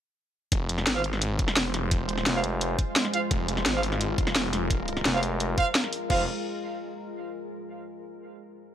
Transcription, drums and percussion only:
0.52 kick loud
0.52 closed hi-hat loud
0.69 closed hi-hat medium
0.78 snare soft
0.87 snare loud
0.87 closed hi-hat loud
1.04 closed hi-hat medium
1.13 snare soft
1.22 closed hi-hat loud
1.39 kick loud
1.39 closed hi-hat medium
1.48 snare medium
1.57 snare loud
1.57 closed hi-hat loud
1.74 snare soft
1.74 closed hi-hat medium
1.91 kick loud
1.91 closed hi-hat loud
2.09 closed hi-hat medium
2.18 snare soft
2.26 snare loud
2.26 closed hi-hat loud
2.44 closed hi-hat medium
2.61 closed hi-hat loud
2.79 kick loud
2.79 closed hi-hat medium
2.96 snare loud
2.96 closed hi-hat loud
3.05 snare soft
3.14 closed hi-hat medium
3.31 kick loud
3.31 closed hi-hat medium
3.48 closed hi-hat medium
3.57 snare soft
3.66 snare loud
3.66 closed hi-hat loud
3.83 open hi-hat medium
3.92 snare soft
4.01 closed hi-hat medium
4.18 kick loud
4.18 closed hi-hat medium
4.27 snare medium
4.36 snare loud
4.36 closed hi-hat medium
4.53 snare soft
4.53 open hi-hat medium
4.70 kick loud
4.70 closed hi-hat medium
4.88 closed hi-hat medium
4.97 snare soft
5.05 snare loud
5.05 closed hi-hat medium
5.23 open hi-hat medium
5.40 closed hi-hat medium
5.58 kick loud
5.58 closed hi-hat medium
5.75 snare loud
5.75 closed hi-hat medium
5.84 snare soft
5.93 open hi-hat medium
6.10 kick loud
6.10 crash medium

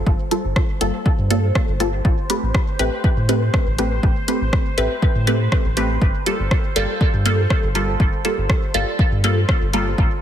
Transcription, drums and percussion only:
0.07 kick loud
0.31 closed hi-hat medium
0.56 kick loud
0.56 cross-stick medium
0.81 closed hi-hat medium
1.06 kick loud
1.31 closed hi-hat medium
1.55 kick loud
1.55 cross-stick medium
1.80 closed hi-hat medium
2.05 kick loud
2.30 closed hi-hat medium
2.54 kick loud
2.54 cross-stick medium
2.79 closed hi-hat medium
3.04 kick loud
3.29 closed hi-hat medium
3.54 kick loud
3.54 cross-stick medium
3.79 closed hi-hat medium
4.03 kick loud
4.28 closed hi-hat medium
4.53 kick loud
4.53 cross-stick medium
4.78 closed hi-hat medium
5.02 kick loud
5.27 closed hi-hat medium
5.52 kick loud
5.52 cross-stick medium
5.77 closed hi-hat medium
6.02 kick loud
6.26 closed hi-hat medium
6.51 kick loud
6.51 cross-stick medium
6.76 closed hi-hat medium
7.01 kick loud
7.26 closed hi-hat medium
7.50 kick loud
7.50 cross-stick medium
7.75 closed hi-hat medium
8.00 kick loud
8.25 closed hi-hat medium
8.50 kick loud
8.50 cross-stick medium
8.74 closed hi-hat medium
8.99 kick loud
9.24 closed hi-hat medium
9.49 kick loud
9.49 cross-stick medium
9.73 closed hi-hat medium
9.98 kick loud

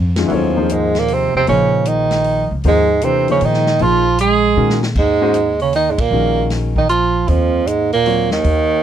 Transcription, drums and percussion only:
0.16 snare medium
0.16 ride medium
0.30 open hi-hat soft
0.69 closed hi-hat medium
0.95 snare soft
0.95 open hi-hat soft
1.08 open hi-hat soft
1.47 open hi-hat soft
1.85 closed hi-hat medium
2.11 snare soft
2.11 open hi-hat soft
2.24 open hi-hat soft
2.64 open hi-hat soft
3.01 closed hi-hat medium
3.28 open hi-hat soft
3.41 open hi-hat soft
3.54 snare soft
3.66 snare soft
3.79 open hi-hat soft
4.18 closed hi-hat medium
4.70 snare medium
4.83 snare medium
4.95 kick medium
4.95 crash medium
5.34 closed hi-hat medium
5.60 open hi-hat soft
5.73 open hi-hat soft
5.98 kick medium
5.98 ride medium
6.50 snare soft
6.50 open hi-hat soft
6.76 kick medium
6.89 closed hi-hat medium
7.28 open hi-hat soft
7.67 closed hi-hat medium
7.93 open hi-hat soft
8.06 open hi-hat soft
8.31 snare medium
8.44 open hi-hat soft

